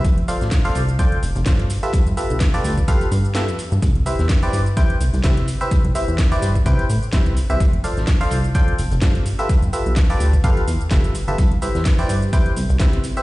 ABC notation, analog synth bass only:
X:1
M:4/4
L:1/16
Q:"Swing 16ths" 1/4=127
K:C
V:1 name="Analog synth bass" clef=bass
F,,,3 A,,,3 C,,3 z F,,, F,,, G,,3 z | z G,,, z B,,,3 D,, z3 G,,3 F,, z G,, | C,,3 E,,3 G,,3 z C,, C,, C,3 z | z C,, z E,,3 G,, z C, z A,, z G,,, C,, z C,, |
F,,,3 A,,,3 C,,3 z F,,, F,,, G,,3 z | z G,,, z B,,,3 D,, z G,, z E,, z F,,, G,,, z G,,, | C,,3 E,,3 G,,3 z C,, C,, C,3 z |]